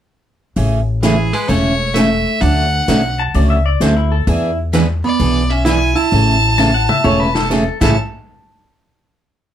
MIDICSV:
0, 0, Header, 1, 7, 480
1, 0, Start_track
1, 0, Key_signature, 3, "major"
1, 0, Tempo, 462963
1, 584, Time_signature, 4, 2, 24, 8
1, 9893, End_track
2, 0, Start_track
2, 0, Title_t, "Fiddle"
2, 0, Program_c, 0, 110
2, 1072, Note_on_c, 0, 68, 75
2, 1392, Note_on_c, 0, 71, 81
2, 1408, Note_off_c, 0, 68, 0
2, 1537, Note_on_c, 0, 73, 92
2, 1552, Note_off_c, 0, 71, 0
2, 2016, Note_on_c, 0, 76, 91
2, 2032, Note_off_c, 0, 73, 0
2, 2499, Note_on_c, 0, 78, 109
2, 2514, Note_off_c, 0, 76, 0
2, 3303, Note_off_c, 0, 78, 0
2, 4904, Note_on_c, 0, 71, 73
2, 5048, Note_off_c, 0, 71, 0
2, 5238, Note_on_c, 0, 74, 90
2, 5698, Note_on_c, 0, 76, 81
2, 5713, Note_off_c, 0, 74, 0
2, 5861, Note_off_c, 0, 76, 0
2, 5868, Note_on_c, 0, 80, 100
2, 6175, Note_on_c, 0, 81, 106
2, 6190, Note_off_c, 0, 80, 0
2, 7778, Note_off_c, 0, 81, 0
2, 8104, Note_on_c, 0, 81, 83
2, 8252, Note_off_c, 0, 81, 0
2, 9893, End_track
3, 0, Start_track
3, 0, Title_t, "Pedal steel guitar"
3, 0, Program_c, 1, 26
3, 3313, Note_on_c, 1, 81, 78
3, 3465, Note_off_c, 1, 81, 0
3, 3475, Note_on_c, 1, 74, 82
3, 3626, Note_off_c, 1, 74, 0
3, 3630, Note_on_c, 1, 76, 81
3, 3784, Note_off_c, 1, 76, 0
3, 3791, Note_on_c, 1, 74, 77
3, 3944, Note_off_c, 1, 74, 0
3, 3957, Note_on_c, 1, 72, 72
3, 4107, Note_off_c, 1, 72, 0
3, 4111, Note_on_c, 1, 64, 77
3, 4264, Note_off_c, 1, 64, 0
3, 4269, Note_on_c, 1, 69, 82
3, 4423, Note_off_c, 1, 69, 0
3, 4428, Note_on_c, 1, 64, 86
3, 4737, Note_off_c, 1, 64, 0
3, 6824, Note_on_c, 1, 81, 77
3, 6979, Note_off_c, 1, 81, 0
3, 6991, Note_on_c, 1, 78, 80
3, 7142, Note_off_c, 1, 78, 0
3, 7146, Note_on_c, 1, 76, 79
3, 7300, Note_off_c, 1, 76, 0
3, 7306, Note_on_c, 1, 73, 82
3, 7460, Note_off_c, 1, 73, 0
3, 7462, Note_on_c, 1, 71, 83
3, 7617, Note_off_c, 1, 71, 0
3, 7623, Note_on_c, 1, 69, 74
3, 7769, Note_off_c, 1, 69, 0
3, 7781, Note_on_c, 1, 69, 77
3, 8088, Note_off_c, 1, 69, 0
3, 8101, Note_on_c, 1, 69, 85
3, 8250, Note_off_c, 1, 69, 0
3, 9893, End_track
4, 0, Start_track
4, 0, Title_t, "Hollow-body jazz guitar"
4, 0, Program_c, 2, 26
4, 1064, Note_on_c, 2, 52, 65
4, 1381, Note_off_c, 2, 52, 0
4, 1381, Note_on_c, 2, 56, 69
4, 1534, Note_off_c, 2, 56, 0
4, 1534, Note_on_c, 2, 57, 75
4, 2001, Note_off_c, 2, 57, 0
4, 2013, Note_on_c, 2, 57, 84
4, 2496, Note_off_c, 2, 57, 0
4, 2496, Note_on_c, 2, 62, 85
4, 3302, Note_off_c, 2, 62, 0
4, 4910, Note_on_c, 2, 52, 76
4, 4996, Note_off_c, 2, 52, 0
4, 5226, Note_on_c, 2, 59, 79
4, 5704, Note_off_c, 2, 59, 0
4, 5704, Note_on_c, 2, 61, 78
4, 5856, Note_on_c, 2, 64, 92
4, 5864, Note_off_c, 2, 61, 0
4, 6157, Note_off_c, 2, 64, 0
4, 6174, Note_on_c, 2, 64, 75
4, 7777, Note_off_c, 2, 64, 0
4, 8099, Note_on_c, 2, 64, 59
4, 8250, Note_off_c, 2, 64, 0
4, 9893, End_track
5, 0, Start_track
5, 0, Title_t, "Steel-string acoustic guitar"
5, 0, Program_c, 3, 25
5, 581, Note_on_c, 3, 49, 51
5, 588, Note_on_c, 3, 52, 59
5, 590, Note_on_c, 3, 57, 52
5, 594, Note_on_c, 3, 61, 57
5, 596, Note_on_c, 3, 68, 57
5, 817, Note_off_c, 3, 49, 0
5, 821, Note_off_c, 3, 52, 0
5, 821, Note_off_c, 3, 57, 0
5, 823, Note_off_c, 3, 61, 0
5, 824, Note_off_c, 3, 68, 0
5, 1066, Note_on_c, 3, 49, 67
5, 1072, Note_on_c, 3, 52, 78
5, 1072, Note_on_c, 3, 57, 74
5, 1075, Note_on_c, 3, 61, 70
5, 1078, Note_on_c, 3, 68, 80
5, 1190, Note_off_c, 3, 49, 0
5, 1192, Note_off_c, 3, 52, 0
5, 1193, Note_off_c, 3, 57, 0
5, 1194, Note_off_c, 3, 61, 0
5, 1195, Note_off_c, 3, 68, 0
5, 1545, Note_on_c, 3, 49, 65
5, 1552, Note_on_c, 3, 52, 62
5, 1557, Note_on_c, 3, 57, 65
5, 1557, Note_on_c, 3, 61, 70
5, 1560, Note_on_c, 3, 68, 58
5, 1780, Note_off_c, 3, 49, 0
5, 1783, Note_off_c, 3, 52, 0
5, 1786, Note_off_c, 3, 57, 0
5, 1786, Note_off_c, 3, 61, 0
5, 1787, Note_off_c, 3, 68, 0
5, 2031, Note_on_c, 3, 49, 69
5, 2032, Note_on_c, 3, 52, 62
5, 2038, Note_on_c, 3, 61, 70
5, 2039, Note_on_c, 3, 57, 68
5, 2041, Note_on_c, 3, 68, 69
5, 2153, Note_off_c, 3, 49, 0
5, 2153, Note_off_c, 3, 52, 0
5, 2156, Note_off_c, 3, 61, 0
5, 2157, Note_off_c, 3, 57, 0
5, 2158, Note_off_c, 3, 68, 0
5, 2509, Note_on_c, 3, 50, 50
5, 2517, Note_on_c, 3, 54, 52
5, 2519, Note_on_c, 3, 57, 51
5, 2520, Note_on_c, 3, 61, 54
5, 2524, Note_on_c, 3, 66, 64
5, 2742, Note_off_c, 3, 50, 0
5, 2746, Note_off_c, 3, 54, 0
5, 2747, Note_off_c, 3, 57, 0
5, 2747, Note_off_c, 3, 61, 0
5, 2749, Note_off_c, 3, 66, 0
5, 2986, Note_on_c, 3, 50, 71
5, 2991, Note_on_c, 3, 57, 69
5, 2992, Note_on_c, 3, 54, 70
5, 2995, Note_on_c, 3, 61, 76
5, 2999, Note_on_c, 3, 66, 74
5, 3111, Note_off_c, 3, 50, 0
5, 3113, Note_off_c, 3, 54, 0
5, 3113, Note_off_c, 3, 57, 0
5, 3115, Note_off_c, 3, 61, 0
5, 3117, Note_off_c, 3, 66, 0
5, 3470, Note_on_c, 3, 50, 60
5, 3473, Note_on_c, 3, 54, 62
5, 3476, Note_on_c, 3, 57, 67
5, 3480, Note_on_c, 3, 61, 70
5, 3484, Note_on_c, 3, 66, 63
5, 3702, Note_off_c, 3, 50, 0
5, 3704, Note_off_c, 3, 54, 0
5, 3705, Note_off_c, 3, 57, 0
5, 3707, Note_off_c, 3, 61, 0
5, 3709, Note_off_c, 3, 66, 0
5, 3952, Note_on_c, 3, 50, 64
5, 3954, Note_on_c, 3, 54, 75
5, 3958, Note_on_c, 3, 57, 77
5, 3961, Note_on_c, 3, 61, 64
5, 3964, Note_on_c, 3, 66, 77
5, 4073, Note_off_c, 3, 50, 0
5, 4074, Note_off_c, 3, 54, 0
5, 4076, Note_off_c, 3, 57, 0
5, 4077, Note_off_c, 3, 61, 0
5, 4079, Note_off_c, 3, 66, 0
5, 4429, Note_on_c, 3, 52, 54
5, 4435, Note_on_c, 3, 59, 62
5, 4437, Note_on_c, 3, 62, 67
5, 4441, Note_on_c, 3, 68, 61
5, 4661, Note_off_c, 3, 52, 0
5, 4664, Note_off_c, 3, 59, 0
5, 4665, Note_off_c, 3, 62, 0
5, 4667, Note_off_c, 3, 68, 0
5, 4906, Note_on_c, 3, 52, 72
5, 4911, Note_on_c, 3, 59, 73
5, 4918, Note_on_c, 3, 62, 74
5, 4918, Note_on_c, 3, 68, 75
5, 5030, Note_off_c, 3, 52, 0
5, 5032, Note_off_c, 3, 59, 0
5, 5035, Note_off_c, 3, 68, 0
5, 5036, Note_off_c, 3, 62, 0
5, 5383, Note_on_c, 3, 52, 65
5, 5388, Note_on_c, 3, 59, 61
5, 5394, Note_on_c, 3, 62, 59
5, 5399, Note_on_c, 3, 68, 60
5, 5618, Note_off_c, 3, 52, 0
5, 5620, Note_off_c, 3, 59, 0
5, 5623, Note_off_c, 3, 62, 0
5, 5626, Note_off_c, 3, 68, 0
5, 5867, Note_on_c, 3, 52, 76
5, 5870, Note_on_c, 3, 59, 73
5, 5874, Note_on_c, 3, 62, 74
5, 5879, Note_on_c, 3, 68, 79
5, 5989, Note_off_c, 3, 52, 0
5, 5991, Note_off_c, 3, 59, 0
5, 5993, Note_off_c, 3, 62, 0
5, 5995, Note_off_c, 3, 68, 0
5, 6341, Note_on_c, 3, 49, 53
5, 6347, Note_on_c, 3, 52, 60
5, 6347, Note_on_c, 3, 57, 57
5, 6352, Note_on_c, 3, 61, 63
5, 6357, Note_on_c, 3, 68, 64
5, 6576, Note_off_c, 3, 49, 0
5, 6579, Note_off_c, 3, 52, 0
5, 6579, Note_off_c, 3, 57, 0
5, 6581, Note_off_c, 3, 61, 0
5, 6584, Note_off_c, 3, 68, 0
5, 6818, Note_on_c, 3, 49, 67
5, 6823, Note_on_c, 3, 52, 66
5, 6824, Note_on_c, 3, 57, 75
5, 6830, Note_on_c, 3, 61, 78
5, 6832, Note_on_c, 3, 68, 72
5, 6945, Note_off_c, 3, 49, 0
5, 6947, Note_off_c, 3, 52, 0
5, 6947, Note_off_c, 3, 57, 0
5, 6950, Note_off_c, 3, 61, 0
5, 6952, Note_off_c, 3, 68, 0
5, 7298, Note_on_c, 3, 49, 59
5, 7303, Note_on_c, 3, 52, 59
5, 7305, Note_on_c, 3, 57, 61
5, 7310, Note_on_c, 3, 61, 63
5, 7314, Note_on_c, 3, 68, 58
5, 7534, Note_off_c, 3, 49, 0
5, 7536, Note_off_c, 3, 52, 0
5, 7538, Note_off_c, 3, 57, 0
5, 7540, Note_off_c, 3, 61, 0
5, 7542, Note_off_c, 3, 68, 0
5, 7784, Note_on_c, 3, 49, 70
5, 7785, Note_on_c, 3, 52, 66
5, 7789, Note_on_c, 3, 57, 75
5, 7791, Note_on_c, 3, 61, 78
5, 7794, Note_on_c, 3, 68, 73
5, 7907, Note_off_c, 3, 49, 0
5, 7907, Note_off_c, 3, 52, 0
5, 7910, Note_off_c, 3, 57, 0
5, 7911, Note_off_c, 3, 61, 0
5, 7912, Note_off_c, 3, 68, 0
5, 8098, Note_on_c, 3, 45, 72
5, 8101, Note_on_c, 3, 49, 62
5, 8108, Note_on_c, 3, 52, 72
5, 8110, Note_on_c, 3, 57, 78
5, 8114, Note_on_c, 3, 61, 72
5, 8116, Note_on_c, 3, 68, 81
5, 8228, Note_off_c, 3, 45, 0
5, 8230, Note_off_c, 3, 49, 0
5, 8233, Note_off_c, 3, 52, 0
5, 8234, Note_off_c, 3, 57, 0
5, 8236, Note_off_c, 3, 61, 0
5, 8237, Note_off_c, 3, 68, 0
5, 9893, End_track
6, 0, Start_track
6, 0, Title_t, "Upright bass"
6, 0, Program_c, 4, 32
6, 585, Note_on_c, 4, 33, 86
6, 1354, Note_off_c, 4, 33, 0
6, 1546, Note_on_c, 4, 28, 76
6, 2315, Note_off_c, 4, 28, 0
6, 2508, Note_on_c, 4, 38, 86
6, 2891, Note_off_c, 4, 38, 0
6, 2987, Note_on_c, 4, 35, 77
6, 3395, Note_off_c, 4, 35, 0
6, 3468, Note_on_c, 4, 37, 79
6, 3875, Note_off_c, 4, 37, 0
6, 3945, Note_on_c, 4, 38, 77
6, 4353, Note_off_c, 4, 38, 0
6, 4428, Note_on_c, 4, 40, 94
6, 5194, Note_off_c, 4, 40, 0
6, 5389, Note_on_c, 4, 35, 81
6, 6154, Note_off_c, 4, 35, 0
6, 6346, Note_on_c, 4, 33, 91
6, 7113, Note_off_c, 4, 33, 0
6, 7303, Note_on_c, 4, 28, 82
6, 7942, Note_off_c, 4, 28, 0
6, 8104, Note_on_c, 4, 33, 92
6, 8252, Note_off_c, 4, 33, 0
6, 9893, End_track
7, 0, Start_track
7, 0, Title_t, "Drums"
7, 584, Note_on_c, 9, 46, 48
7, 688, Note_off_c, 9, 46, 0
7, 1067, Note_on_c, 9, 38, 75
7, 1067, Note_on_c, 9, 42, 61
7, 1170, Note_off_c, 9, 38, 0
7, 1170, Note_off_c, 9, 42, 0
7, 1388, Note_on_c, 9, 46, 41
7, 1491, Note_off_c, 9, 46, 0
7, 1544, Note_on_c, 9, 46, 46
7, 1647, Note_off_c, 9, 46, 0
7, 2027, Note_on_c, 9, 38, 64
7, 2027, Note_on_c, 9, 42, 54
7, 2130, Note_off_c, 9, 38, 0
7, 2130, Note_off_c, 9, 42, 0
7, 2505, Note_on_c, 9, 46, 46
7, 2609, Note_off_c, 9, 46, 0
7, 2988, Note_on_c, 9, 38, 79
7, 2988, Note_on_c, 9, 42, 60
7, 3091, Note_off_c, 9, 38, 0
7, 3091, Note_off_c, 9, 42, 0
7, 3466, Note_on_c, 9, 46, 47
7, 3569, Note_off_c, 9, 46, 0
7, 3948, Note_on_c, 9, 38, 69
7, 3948, Note_on_c, 9, 42, 53
7, 4051, Note_off_c, 9, 38, 0
7, 4051, Note_off_c, 9, 42, 0
7, 4428, Note_on_c, 9, 46, 50
7, 4532, Note_off_c, 9, 46, 0
7, 4906, Note_on_c, 9, 38, 75
7, 4906, Note_on_c, 9, 42, 60
7, 5010, Note_off_c, 9, 38, 0
7, 5010, Note_off_c, 9, 42, 0
7, 5386, Note_on_c, 9, 46, 48
7, 5490, Note_off_c, 9, 46, 0
7, 5865, Note_on_c, 9, 38, 70
7, 5865, Note_on_c, 9, 42, 56
7, 5969, Note_off_c, 9, 38, 0
7, 5969, Note_off_c, 9, 42, 0
7, 6184, Note_on_c, 9, 46, 40
7, 6288, Note_off_c, 9, 46, 0
7, 6345, Note_on_c, 9, 46, 46
7, 6449, Note_off_c, 9, 46, 0
7, 6823, Note_on_c, 9, 38, 53
7, 6926, Note_off_c, 9, 38, 0
7, 7142, Note_on_c, 9, 47, 68
7, 7245, Note_off_c, 9, 47, 0
7, 7300, Note_on_c, 9, 47, 68
7, 7404, Note_off_c, 9, 47, 0
7, 7619, Note_on_c, 9, 38, 82
7, 7723, Note_off_c, 9, 38, 0
7, 7776, Note_on_c, 9, 38, 54
7, 7880, Note_off_c, 9, 38, 0
7, 8101, Note_on_c, 9, 36, 91
7, 8101, Note_on_c, 9, 38, 80
7, 8101, Note_on_c, 9, 49, 85
7, 8204, Note_off_c, 9, 36, 0
7, 8205, Note_off_c, 9, 38, 0
7, 8205, Note_off_c, 9, 49, 0
7, 9893, End_track
0, 0, End_of_file